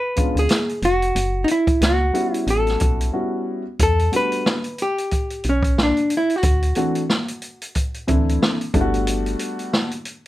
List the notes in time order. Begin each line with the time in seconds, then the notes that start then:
Already playing: B4
0.16 G#3 B3 C#4 D4 F4, kick, closed hi-hat
0.35 D2 G#4, closed hi-hat
0.49 snare, closed hi-hat
0.69 closed hi-hat
0.82 F1 F#4, closed hi-hat
1.02 closed hi-hat
1.15 F#1, closed hi-hat
1.44 D#4, closed hi-hat
1.51 E4
1.67 kick, closed hi-hat
1.81 C#2 F#4, snare, closed hi-hat
2.13 G3 B3 C#4 E4 F#4, closed hi-hat
2.34 E4, closed hi-hat
2.47 A1 A4, closed hi-hat
2.67 snare, closed hi-hat
2.80 B1, kick, closed hi-hat
3.01 closed hi-hat
3.13 G3 B3 C#4 E4 F#4
3.79 E2 A4, kick, closed hi-hat
3.99 closed hi-hat
4.12 G3 A3 B3 D4 F#4, closed hi-hat
4.16 B4
4.32 closed hi-hat
4.46 snare
4.64 closed hi-hat
4.78 G4, closed hi-hat
4.98 closed hi-hat
5.11 kick, closed hi-hat
5.30 closed hi-hat
5.44 B1, closed hi-hat
5.49 C#4
5.63 kick, closed hi-hat
5.78 snare
5.83 D4
5.97 closed hi-hat
6.10 closed hi-hat
6.17 E4
6.30 closed hi-hat
6.36 F#4
6.43 D2, kick, closed hi-hat
6.63 closed hi-hat
6.75 E3 A3 C4 D4 F#4, closed hi-hat
6.95 closed hi-hat
7.10 snare
7.28 closed hi-hat
7.42 closed hi-hat
7.62 closed hi-hat
7.75 kick, closed hi-hat
7.94 closed hi-hat
8.07 D2 E3 A3 C4 D4 E4, kick, closed hi-hat
8.29 closed hi-hat
8.42 snare
8.61 closed hi-hat
8.74 G1 G3 A3 B3 D4 E4, kick, closed hi-hat
8.81 F#4
8.94 closed hi-hat
9.07 closed hi-hat
9.26 closed hi-hat
9.39 closed hi-hat
9.59 closed hi-hat
9.73 snare
9.91 closed hi-hat
10.05 closed hi-hat